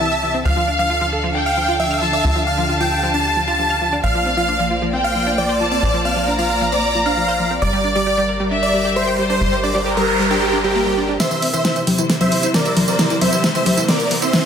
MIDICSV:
0, 0, Header, 1, 9, 480
1, 0, Start_track
1, 0, Tempo, 447761
1, 487, Time_signature, 4, 2, 24, 8
1, 15495, End_track
2, 0, Start_track
2, 0, Title_t, "Violin section"
2, 0, Program_c, 0, 48
2, 0, Note_on_c, 0, 81, 90
2, 391, Note_off_c, 0, 81, 0
2, 487, Note_on_c, 0, 77, 97
2, 1351, Note_off_c, 0, 77, 0
2, 1445, Note_on_c, 0, 79, 93
2, 2070, Note_off_c, 0, 79, 0
2, 2164, Note_on_c, 0, 81, 88
2, 2789, Note_off_c, 0, 81, 0
2, 2887, Note_on_c, 0, 81, 93
2, 4231, Note_off_c, 0, 81, 0
2, 4327, Note_on_c, 0, 77, 96
2, 5191, Note_off_c, 0, 77, 0
2, 5287, Note_on_c, 0, 79, 89
2, 5911, Note_off_c, 0, 79, 0
2, 6006, Note_on_c, 0, 81, 85
2, 6630, Note_off_c, 0, 81, 0
2, 6723, Note_on_c, 0, 82, 92
2, 8069, Note_off_c, 0, 82, 0
2, 8166, Note_on_c, 0, 74, 97
2, 9030, Note_off_c, 0, 74, 0
2, 9127, Note_on_c, 0, 76, 92
2, 9751, Note_off_c, 0, 76, 0
2, 9846, Note_on_c, 0, 72, 93
2, 10470, Note_off_c, 0, 72, 0
2, 10567, Note_on_c, 0, 70, 93
2, 11911, Note_off_c, 0, 70, 0
2, 15495, End_track
3, 0, Start_track
3, 0, Title_t, "Supersaw synth"
3, 0, Program_c, 1, 81
3, 0, Note_on_c, 1, 76, 93
3, 390, Note_off_c, 1, 76, 0
3, 486, Note_on_c, 1, 77, 97
3, 768, Note_off_c, 1, 77, 0
3, 848, Note_on_c, 1, 77, 94
3, 1129, Note_off_c, 1, 77, 0
3, 1565, Note_on_c, 1, 77, 87
3, 1848, Note_off_c, 1, 77, 0
3, 1925, Note_on_c, 1, 76, 90
3, 2208, Note_off_c, 1, 76, 0
3, 2284, Note_on_c, 1, 76, 90
3, 2567, Note_off_c, 1, 76, 0
3, 2645, Note_on_c, 1, 77, 89
3, 2928, Note_off_c, 1, 77, 0
3, 3006, Note_on_c, 1, 79, 92
3, 3289, Note_off_c, 1, 79, 0
3, 3365, Note_on_c, 1, 81, 90
3, 3648, Note_off_c, 1, 81, 0
3, 3725, Note_on_c, 1, 81, 93
3, 4230, Note_off_c, 1, 81, 0
3, 4326, Note_on_c, 1, 77, 94
3, 4608, Note_off_c, 1, 77, 0
3, 4686, Note_on_c, 1, 77, 94
3, 4969, Note_off_c, 1, 77, 0
3, 5406, Note_on_c, 1, 77, 89
3, 5688, Note_off_c, 1, 77, 0
3, 5767, Note_on_c, 1, 74, 93
3, 6049, Note_off_c, 1, 74, 0
3, 6125, Note_on_c, 1, 74, 93
3, 6408, Note_off_c, 1, 74, 0
3, 6486, Note_on_c, 1, 77, 92
3, 6769, Note_off_c, 1, 77, 0
3, 6846, Note_on_c, 1, 77, 92
3, 7128, Note_off_c, 1, 77, 0
3, 7205, Note_on_c, 1, 74, 89
3, 7488, Note_off_c, 1, 74, 0
3, 7565, Note_on_c, 1, 77, 94
3, 8070, Note_off_c, 1, 77, 0
3, 8167, Note_on_c, 1, 74, 96
3, 8449, Note_off_c, 1, 74, 0
3, 8525, Note_on_c, 1, 74, 94
3, 8808, Note_off_c, 1, 74, 0
3, 9247, Note_on_c, 1, 74, 90
3, 9529, Note_off_c, 1, 74, 0
3, 9606, Note_on_c, 1, 72, 93
3, 9889, Note_off_c, 1, 72, 0
3, 9967, Note_on_c, 1, 72, 92
3, 10249, Note_off_c, 1, 72, 0
3, 10328, Note_on_c, 1, 74, 90
3, 10609, Note_off_c, 1, 74, 0
3, 10688, Note_on_c, 1, 70, 94
3, 10969, Note_off_c, 1, 70, 0
3, 11048, Note_on_c, 1, 67, 93
3, 11330, Note_off_c, 1, 67, 0
3, 11408, Note_on_c, 1, 67, 94
3, 11911, Note_off_c, 1, 67, 0
3, 12006, Note_on_c, 1, 72, 76
3, 12006, Note_on_c, 1, 76, 97
3, 12288, Note_off_c, 1, 76, 0
3, 12289, Note_off_c, 1, 72, 0
3, 12366, Note_on_c, 1, 76, 93
3, 12367, Note_on_c, 1, 72, 78
3, 12649, Note_off_c, 1, 72, 0
3, 12649, Note_off_c, 1, 76, 0
3, 13085, Note_on_c, 1, 72, 74
3, 13085, Note_on_c, 1, 76, 92
3, 13368, Note_off_c, 1, 72, 0
3, 13368, Note_off_c, 1, 76, 0
3, 13447, Note_on_c, 1, 70, 78
3, 13447, Note_on_c, 1, 74, 98
3, 13729, Note_off_c, 1, 70, 0
3, 13729, Note_off_c, 1, 74, 0
3, 13807, Note_on_c, 1, 70, 75
3, 13807, Note_on_c, 1, 74, 93
3, 14089, Note_off_c, 1, 70, 0
3, 14089, Note_off_c, 1, 74, 0
3, 14166, Note_on_c, 1, 72, 78
3, 14166, Note_on_c, 1, 76, 92
3, 14448, Note_off_c, 1, 72, 0
3, 14448, Note_off_c, 1, 76, 0
3, 14527, Note_on_c, 1, 72, 76
3, 14527, Note_on_c, 1, 76, 97
3, 14809, Note_off_c, 1, 72, 0
3, 14809, Note_off_c, 1, 76, 0
3, 14887, Note_on_c, 1, 70, 76
3, 14887, Note_on_c, 1, 74, 97
3, 15169, Note_off_c, 1, 70, 0
3, 15169, Note_off_c, 1, 74, 0
3, 15247, Note_on_c, 1, 72, 78
3, 15247, Note_on_c, 1, 76, 97
3, 15495, Note_off_c, 1, 72, 0
3, 15495, Note_off_c, 1, 76, 0
3, 15495, End_track
4, 0, Start_track
4, 0, Title_t, "String section"
4, 0, Program_c, 2, 48
4, 0, Note_on_c, 2, 48, 72
4, 0, Note_on_c, 2, 60, 68
4, 0, Note_on_c, 2, 67, 66
4, 0, Note_on_c, 2, 76, 78
4, 446, Note_off_c, 2, 48, 0
4, 446, Note_off_c, 2, 60, 0
4, 446, Note_off_c, 2, 67, 0
4, 446, Note_off_c, 2, 76, 0
4, 484, Note_on_c, 2, 62, 66
4, 485, Note_on_c, 2, 50, 74
4, 485, Note_on_c, 2, 69, 68
4, 485, Note_on_c, 2, 77, 79
4, 2387, Note_off_c, 2, 69, 0
4, 2407, Note_on_c, 2, 67, 66
4, 4287, Note_off_c, 2, 62, 0
4, 4288, Note_off_c, 2, 50, 0
4, 4288, Note_off_c, 2, 77, 0
4, 4308, Note_off_c, 2, 67, 0
4, 4326, Note_on_c, 2, 58, 74
4, 4326, Note_on_c, 2, 65, 68
4, 4326, Note_on_c, 2, 72, 69
4, 4326, Note_on_c, 2, 74, 81
4, 8128, Note_off_c, 2, 58, 0
4, 8128, Note_off_c, 2, 65, 0
4, 8128, Note_off_c, 2, 72, 0
4, 8165, Note_on_c, 2, 67, 67
4, 8166, Note_on_c, 2, 55, 74
4, 8167, Note_on_c, 2, 70, 68
4, 10044, Note_off_c, 2, 74, 0
4, 10086, Note_on_c, 2, 72, 80
4, 11968, Note_off_c, 2, 55, 0
4, 11968, Note_off_c, 2, 67, 0
4, 11968, Note_off_c, 2, 70, 0
4, 11987, Note_off_c, 2, 72, 0
4, 12006, Note_on_c, 2, 48, 76
4, 12006, Note_on_c, 2, 55, 69
4, 12006, Note_on_c, 2, 72, 82
4, 12007, Note_on_c, 2, 64, 69
4, 15495, Note_off_c, 2, 48, 0
4, 15495, Note_off_c, 2, 55, 0
4, 15495, Note_off_c, 2, 64, 0
4, 15495, Note_off_c, 2, 72, 0
4, 15495, End_track
5, 0, Start_track
5, 0, Title_t, "Synth pluck"
5, 0, Program_c, 3, 84
5, 4, Note_on_c, 3, 52, 81
5, 75, Note_off_c, 3, 52, 0
5, 124, Note_on_c, 3, 76, 98
5, 172, Note_off_c, 3, 76, 0
5, 246, Note_on_c, 3, 52, 71
5, 315, Note_off_c, 3, 52, 0
5, 366, Note_on_c, 3, 60, 76
5, 412, Note_off_c, 3, 60, 0
5, 486, Note_on_c, 3, 53, 81
5, 532, Note_off_c, 3, 53, 0
5, 605, Note_on_c, 3, 53, 93
5, 652, Note_off_c, 3, 53, 0
5, 725, Note_on_c, 3, 62, 71
5, 795, Note_off_c, 3, 62, 0
5, 845, Note_on_c, 3, 53, 96
5, 915, Note_off_c, 3, 53, 0
5, 966, Note_on_c, 3, 65, 81
5, 1035, Note_off_c, 3, 65, 0
5, 1086, Note_on_c, 3, 53, 94
5, 1132, Note_off_c, 3, 53, 0
5, 1205, Note_on_c, 3, 69, 74
5, 1275, Note_off_c, 3, 69, 0
5, 1325, Note_on_c, 3, 53, 96
5, 1395, Note_off_c, 3, 53, 0
5, 1445, Note_on_c, 3, 62, 77
5, 1515, Note_off_c, 3, 62, 0
5, 1685, Note_on_c, 3, 53, 72
5, 1755, Note_off_c, 3, 53, 0
5, 1805, Note_on_c, 3, 65, 93
5, 1875, Note_off_c, 3, 65, 0
5, 1923, Note_on_c, 3, 53, 77
5, 1994, Note_off_c, 3, 53, 0
5, 2044, Note_on_c, 3, 77, 99
5, 2091, Note_off_c, 3, 77, 0
5, 2164, Note_on_c, 3, 53, 73
5, 2235, Note_off_c, 3, 53, 0
5, 2284, Note_on_c, 3, 62, 74
5, 2331, Note_off_c, 3, 62, 0
5, 2405, Note_on_c, 3, 53, 78
5, 2452, Note_off_c, 3, 53, 0
5, 2525, Note_on_c, 3, 53, 100
5, 2572, Note_off_c, 3, 53, 0
5, 2645, Note_on_c, 3, 62, 70
5, 2715, Note_off_c, 3, 62, 0
5, 2765, Note_on_c, 3, 53, 99
5, 2835, Note_off_c, 3, 53, 0
5, 2885, Note_on_c, 3, 65, 79
5, 2955, Note_off_c, 3, 65, 0
5, 3005, Note_on_c, 3, 53, 98
5, 3052, Note_off_c, 3, 53, 0
5, 3124, Note_on_c, 3, 69, 74
5, 3194, Note_off_c, 3, 69, 0
5, 3245, Note_on_c, 3, 53, 100
5, 3315, Note_off_c, 3, 53, 0
5, 3365, Note_on_c, 3, 62, 78
5, 3435, Note_off_c, 3, 62, 0
5, 3606, Note_on_c, 3, 53, 73
5, 3675, Note_off_c, 3, 53, 0
5, 3726, Note_on_c, 3, 65, 97
5, 3795, Note_off_c, 3, 65, 0
5, 3848, Note_on_c, 3, 53, 77
5, 3916, Note_off_c, 3, 53, 0
5, 3968, Note_on_c, 3, 77, 97
5, 4013, Note_off_c, 3, 77, 0
5, 4088, Note_on_c, 3, 53, 72
5, 4156, Note_off_c, 3, 53, 0
5, 4207, Note_on_c, 3, 62, 77
5, 4253, Note_off_c, 3, 62, 0
5, 4328, Note_on_c, 3, 53, 80
5, 4373, Note_off_c, 3, 53, 0
5, 4447, Note_on_c, 3, 53, 98
5, 4493, Note_off_c, 3, 53, 0
5, 4566, Note_on_c, 3, 60, 70
5, 4635, Note_off_c, 3, 60, 0
5, 4686, Note_on_c, 3, 53, 97
5, 4755, Note_off_c, 3, 53, 0
5, 4807, Note_on_c, 3, 62, 78
5, 4876, Note_off_c, 3, 62, 0
5, 4927, Note_on_c, 3, 53, 98
5, 4973, Note_off_c, 3, 53, 0
5, 5047, Note_on_c, 3, 65, 73
5, 5116, Note_off_c, 3, 65, 0
5, 5166, Note_on_c, 3, 53, 98
5, 5236, Note_off_c, 3, 53, 0
5, 5286, Note_on_c, 3, 60, 79
5, 5356, Note_off_c, 3, 60, 0
5, 5526, Note_on_c, 3, 53, 72
5, 5595, Note_off_c, 3, 53, 0
5, 5647, Note_on_c, 3, 62, 93
5, 5716, Note_off_c, 3, 62, 0
5, 5766, Note_on_c, 3, 53, 78
5, 5835, Note_off_c, 3, 53, 0
5, 5886, Note_on_c, 3, 72, 97
5, 5932, Note_off_c, 3, 72, 0
5, 6007, Note_on_c, 3, 53, 72
5, 6076, Note_off_c, 3, 53, 0
5, 6126, Note_on_c, 3, 60, 77
5, 6172, Note_off_c, 3, 60, 0
5, 6246, Note_on_c, 3, 53, 79
5, 6292, Note_off_c, 3, 53, 0
5, 6366, Note_on_c, 3, 53, 98
5, 6412, Note_off_c, 3, 53, 0
5, 6486, Note_on_c, 3, 60, 69
5, 6555, Note_off_c, 3, 60, 0
5, 6606, Note_on_c, 3, 53, 97
5, 6675, Note_off_c, 3, 53, 0
5, 6726, Note_on_c, 3, 62, 79
5, 6796, Note_off_c, 3, 62, 0
5, 6847, Note_on_c, 3, 53, 98
5, 6893, Note_off_c, 3, 53, 0
5, 6967, Note_on_c, 3, 65, 75
5, 7036, Note_off_c, 3, 65, 0
5, 7086, Note_on_c, 3, 53, 98
5, 7155, Note_off_c, 3, 53, 0
5, 7207, Note_on_c, 3, 60, 77
5, 7276, Note_off_c, 3, 60, 0
5, 7447, Note_on_c, 3, 53, 73
5, 7516, Note_off_c, 3, 53, 0
5, 7566, Note_on_c, 3, 62, 97
5, 7635, Note_off_c, 3, 62, 0
5, 7687, Note_on_c, 3, 53, 80
5, 7756, Note_off_c, 3, 53, 0
5, 7807, Note_on_c, 3, 72, 100
5, 7853, Note_off_c, 3, 72, 0
5, 7928, Note_on_c, 3, 53, 75
5, 7996, Note_off_c, 3, 53, 0
5, 8048, Note_on_c, 3, 60, 76
5, 8093, Note_off_c, 3, 60, 0
5, 8167, Note_on_c, 3, 55, 79
5, 8213, Note_off_c, 3, 55, 0
5, 8286, Note_on_c, 3, 55, 98
5, 8333, Note_off_c, 3, 55, 0
5, 8406, Note_on_c, 3, 62, 73
5, 8475, Note_off_c, 3, 62, 0
5, 8527, Note_on_c, 3, 55, 98
5, 8596, Note_off_c, 3, 55, 0
5, 8646, Note_on_c, 3, 67, 79
5, 8715, Note_off_c, 3, 67, 0
5, 8766, Note_on_c, 3, 55, 95
5, 8812, Note_off_c, 3, 55, 0
5, 8885, Note_on_c, 3, 70, 70
5, 8955, Note_off_c, 3, 70, 0
5, 9005, Note_on_c, 3, 55, 95
5, 9075, Note_off_c, 3, 55, 0
5, 9125, Note_on_c, 3, 62, 76
5, 9195, Note_off_c, 3, 62, 0
5, 9366, Note_on_c, 3, 55, 72
5, 9435, Note_off_c, 3, 55, 0
5, 9486, Note_on_c, 3, 67, 97
5, 9555, Note_off_c, 3, 67, 0
5, 9607, Note_on_c, 3, 55, 80
5, 9676, Note_off_c, 3, 55, 0
5, 9726, Note_on_c, 3, 79, 96
5, 9773, Note_off_c, 3, 79, 0
5, 9847, Note_on_c, 3, 55, 73
5, 9916, Note_off_c, 3, 55, 0
5, 9967, Note_on_c, 3, 62, 76
5, 10013, Note_off_c, 3, 62, 0
5, 10088, Note_on_c, 3, 55, 80
5, 10133, Note_off_c, 3, 55, 0
5, 10206, Note_on_c, 3, 55, 97
5, 10253, Note_off_c, 3, 55, 0
5, 10327, Note_on_c, 3, 62, 74
5, 10396, Note_off_c, 3, 62, 0
5, 10447, Note_on_c, 3, 55, 102
5, 10516, Note_off_c, 3, 55, 0
5, 10567, Note_on_c, 3, 67, 80
5, 10636, Note_off_c, 3, 67, 0
5, 10686, Note_on_c, 3, 55, 97
5, 10732, Note_off_c, 3, 55, 0
5, 10805, Note_on_c, 3, 70, 73
5, 10875, Note_off_c, 3, 70, 0
5, 10927, Note_on_c, 3, 55, 96
5, 10996, Note_off_c, 3, 55, 0
5, 11047, Note_on_c, 3, 62, 79
5, 11116, Note_off_c, 3, 62, 0
5, 11287, Note_on_c, 3, 62, 98
5, 11333, Note_off_c, 3, 62, 0
5, 11406, Note_on_c, 3, 55, 96
5, 11453, Note_off_c, 3, 55, 0
5, 11525, Note_on_c, 3, 58, 99
5, 11572, Note_off_c, 3, 58, 0
5, 11645, Note_on_c, 3, 55, 74
5, 11673, Note_off_c, 3, 55, 0
5, 11765, Note_on_c, 3, 62, 74
5, 11835, Note_off_c, 3, 62, 0
5, 11885, Note_on_c, 3, 62, 75
5, 11932, Note_off_c, 3, 62, 0
5, 12006, Note_on_c, 3, 52, 81
5, 12052, Note_off_c, 3, 52, 0
5, 12126, Note_on_c, 3, 52, 98
5, 12172, Note_off_c, 3, 52, 0
5, 12245, Note_on_c, 3, 60, 73
5, 12315, Note_off_c, 3, 60, 0
5, 12365, Note_on_c, 3, 52, 99
5, 12435, Note_off_c, 3, 52, 0
5, 12485, Note_on_c, 3, 64, 79
5, 12555, Note_off_c, 3, 64, 0
5, 12606, Note_on_c, 3, 52, 96
5, 12652, Note_off_c, 3, 52, 0
5, 12727, Note_on_c, 3, 67, 75
5, 12796, Note_off_c, 3, 67, 0
5, 12845, Note_on_c, 3, 52, 100
5, 12915, Note_off_c, 3, 52, 0
5, 12966, Note_on_c, 3, 60, 81
5, 13035, Note_off_c, 3, 60, 0
5, 13205, Note_on_c, 3, 52, 74
5, 13275, Note_off_c, 3, 52, 0
5, 13325, Note_on_c, 3, 64, 97
5, 13395, Note_off_c, 3, 64, 0
5, 13445, Note_on_c, 3, 52, 81
5, 13515, Note_off_c, 3, 52, 0
5, 13567, Note_on_c, 3, 76, 102
5, 13613, Note_off_c, 3, 76, 0
5, 13687, Note_on_c, 3, 52, 73
5, 13756, Note_off_c, 3, 52, 0
5, 13808, Note_on_c, 3, 60, 77
5, 13853, Note_off_c, 3, 60, 0
5, 13927, Note_on_c, 3, 52, 82
5, 13973, Note_off_c, 3, 52, 0
5, 14048, Note_on_c, 3, 52, 102
5, 14093, Note_off_c, 3, 52, 0
5, 14167, Note_on_c, 3, 60, 74
5, 14236, Note_off_c, 3, 60, 0
5, 14287, Note_on_c, 3, 52, 102
5, 14356, Note_off_c, 3, 52, 0
5, 14407, Note_on_c, 3, 64, 83
5, 14476, Note_off_c, 3, 64, 0
5, 14527, Note_on_c, 3, 52, 102
5, 14573, Note_off_c, 3, 52, 0
5, 14646, Note_on_c, 3, 67, 75
5, 14715, Note_off_c, 3, 67, 0
5, 14765, Note_on_c, 3, 52, 99
5, 14835, Note_off_c, 3, 52, 0
5, 14885, Note_on_c, 3, 60, 79
5, 14955, Note_off_c, 3, 60, 0
5, 15126, Note_on_c, 3, 52, 76
5, 15195, Note_off_c, 3, 52, 0
5, 15245, Note_on_c, 3, 64, 101
5, 15315, Note_off_c, 3, 64, 0
5, 15366, Note_on_c, 3, 52, 81
5, 15435, Note_off_c, 3, 52, 0
5, 15495, End_track
6, 0, Start_track
6, 0, Title_t, "Analog synth bass"
6, 0, Program_c, 4, 38
6, 0, Note_on_c, 4, 36, 83
6, 462, Note_off_c, 4, 36, 0
6, 485, Note_on_c, 4, 38, 85
6, 2382, Note_off_c, 4, 38, 0
6, 2405, Note_on_c, 4, 38, 85
6, 4302, Note_off_c, 4, 38, 0
6, 4325, Note_on_c, 4, 34, 82
6, 6222, Note_off_c, 4, 34, 0
6, 6247, Note_on_c, 4, 34, 84
6, 8143, Note_off_c, 4, 34, 0
6, 8167, Note_on_c, 4, 31, 85
6, 10063, Note_off_c, 4, 31, 0
6, 10086, Note_on_c, 4, 31, 83
6, 11982, Note_off_c, 4, 31, 0
6, 15495, End_track
7, 0, Start_track
7, 0, Title_t, "Noise sweep"
7, 0, Program_c, 5, 103
7, 10087, Note_on_c, 5, 60, 70
7, 12007, Note_off_c, 5, 60, 0
7, 15495, End_track
8, 0, Start_track
8, 0, Title_t, "Riser"
8, 0, Program_c, 6, 103
8, 12006, Note_on_c, 6, 60, 73
8, 15495, Note_off_c, 6, 60, 0
8, 15495, End_track
9, 0, Start_track
9, 0, Title_t, "Drums"
9, 12006, Note_on_c, 9, 38, 46
9, 12006, Note_on_c, 9, 42, 75
9, 12006, Note_on_c, 9, 54, 46
9, 12113, Note_off_c, 9, 38, 0
9, 12113, Note_off_c, 9, 42, 0
9, 12113, Note_off_c, 9, 54, 0
9, 12126, Note_on_c, 9, 42, 51
9, 12126, Note_on_c, 9, 54, 29
9, 12233, Note_off_c, 9, 42, 0
9, 12233, Note_off_c, 9, 54, 0
9, 12247, Note_on_c, 9, 46, 99
9, 12354, Note_off_c, 9, 46, 0
9, 12367, Note_on_c, 9, 42, 49
9, 12367, Note_on_c, 9, 54, 55
9, 12474, Note_off_c, 9, 42, 0
9, 12474, Note_off_c, 9, 54, 0
9, 12487, Note_on_c, 9, 38, 47
9, 12487, Note_on_c, 9, 42, 77
9, 12487, Note_on_c, 9, 54, 45
9, 12594, Note_off_c, 9, 38, 0
9, 12594, Note_off_c, 9, 42, 0
9, 12594, Note_off_c, 9, 54, 0
9, 12607, Note_on_c, 9, 42, 52
9, 12607, Note_on_c, 9, 54, 29
9, 12714, Note_off_c, 9, 42, 0
9, 12714, Note_off_c, 9, 54, 0
9, 12726, Note_on_c, 9, 46, 106
9, 12726, Note_on_c, 9, 63, 57
9, 12834, Note_off_c, 9, 46, 0
9, 12834, Note_off_c, 9, 63, 0
9, 12846, Note_on_c, 9, 42, 51
9, 12846, Note_on_c, 9, 54, 57
9, 12953, Note_off_c, 9, 42, 0
9, 12953, Note_off_c, 9, 54, 0
9, 12966, Note_on_c, 9, 38, 51
9, 12966, Note_on_c, 9, 42, 76
9, 12966, Note_on_c, 9, 54, 46
9, 13073, Note_off_c, 9, 38, 0
9, 13073, Note_off_c, 9, 42, 0
9, 13073, Note_off_c, 9, 54, 0
9, 13087, Note_on_c, 9, 42, 54
9, 13087, Note_on_c, 9, 54, 29
9, 13087, Note_on_c, 9, 63, 76
9, 13194, Note_off_c, 9, 42, 0
9, 13194, Note_off_c, 9, 54, 0
9, 13194, Note_off_c, 9, 63, 0
9, 13205, Note_on_c, 9, 46, 100
9, 13313, Note_off_c, 9, 46, 0
9, 13326, Note_on_c, 9, 42, 53
9, 13326, Note_on_c, 9, 54, 57
9, 13433, Note_off_c, 9, 42, 0
9, 13433, Note_off_c, 9, 54, 0
9, 13446, Note_on_c, 9, 38, 54
9, 13446, Note_on_c, 9, 42, 80
9, 13446, Note_on_c, 9, 54, 50
9, 13553, Note_off_c, 9, 38, 0
9, 13553, Note_off_c, 9, 42, 0
9, 13553, Note_off_c, 9, 54, 0
9, 13566, Note_on_c, 9, 42, 52
9, 13566, Note_on_c, 9, 54, 29
9, 13673, Note_off_c, 9, 42, 0
9, 13673, Note_off_c, 9, 54, 0
9, 13685, Note_on_c, 9, 46, 98
9, 13685, Note_on_c, 9, 63, 72
9, 13792, Note_off_c, 9, 46, 0
9, 13792, Note_off_c, 9, 63, 0
9, 13806, Note_on_c, 9, 42, 50
9, 13806, Note_on_c, 9, 54, 57
9, 13913, Note_off_c, 9, 42, 0
9, 13913, Note_off_c, 9, 54, 0
9, 13926, Note_on_c, 9, 38, 55
9, 13926, Note_on_c, 9, 42, 77
9, 13926, Note_on_c, 9, 54, 47
9, 14033, Note_off_c, 9, 38, 0
9, 14033, Note_off_c, 9, 42, 0
9, 14033, Note_off_c, 9, 54, 0
9, 14046, Note_on_c, 9, 42, 52
9, 14046, Note_on_c, 9, 54, 29
9, 14153, Note_off_c, 9, 42, 0
9, 14153, Note_off_c, 9, 54, 0
9, 14166, Note_on_c, 9, 46, 107
9, 14166, Note_on_c, 9, 63, 59
9, 14273, Note_off_c, 9, 46, 0
9, 14273, Note_off_c, 9, 63, 0
9, 14286, Note_on_c, 9, 42, 49
9, 14286, Note_on_c, 9, 54, 58
9, 14393, Note_off_c, 9, 42, 0
9, 14393, Note_off_c, 9, 54, 0
9, 14406, Note_on_c, 9, 38, 59
9, 14406, Note_on_c, 9, 42, 76
9, 14406, Note_on_c, 9, 54, 48
9, 14513, Note_off_c, 9, 38, 0
9, 14513, Note_off_c, 9, 42, 0
9, 14513, Note_off_c, 9, 54, 0
9, 14526, Note_on_c, 9, 42, 52
9, 14526, Note_on_c, 9, 54, 29
9, 14633, Note_off_c, 9, 42, 0
9, 14633, Note_off_c, 9, 54, 0
9, 14645, Note_on_c, 9, 46, 109
9, 14645, Note_on_c, 9, 63, 60
9, 14753, Note_off_c, 9, 46, 0
9, 14753, Note_off_c, 9, 63, 0
9, 14766, Note_on_c, 9, 54, 57
9, 14873, Note_off_c, 9, 54, 0
9, 14885, Note_on_c, 9, 38, 64
9, 14885, Note_on_c, 9, 42, 80
9, 14885, Note_on_c, 9, 54, 47
9, 14992, Note_off_c, 9, 38, 0
9, 14992, Note_off_c, 9, 42, 0
9, 14992, Note_off_c, 9, 54, 0
9, 15006, Note_on_c, 9, 42, 53
9, 15006, Note_on_c, 9, 54, 31
9, 15113, Note_off_c, 9, 42, 0
9, 15113, Note_off_c, 9, 54, 0
9, 15126, Note_on_c, 9, 46, 111
9, 15233, Note_off_c, 9, 46, 0
9, 15245, Note_on_c, 9, 42, 53
9, 15245, Note_on_c, 9, 54, 57
9, 15353, Note_off_c, 9, 42, 0
9, 15353, Note_off_c, 9, 54, 0
9, 15367, Note_on_c, 9, 38, 69
9, 15367, Note_on_c, 9, 42, 80
9, 15367, Note_on_c, 9, 54, 48
9, 15474, Note_off_c, 9, 38, 0
9, 15474, Note_off_c, 9, 42, 0
9, 15474, Note_off_c, 9, 54, 0
9, 15495, End_track
0, 0, End_of_file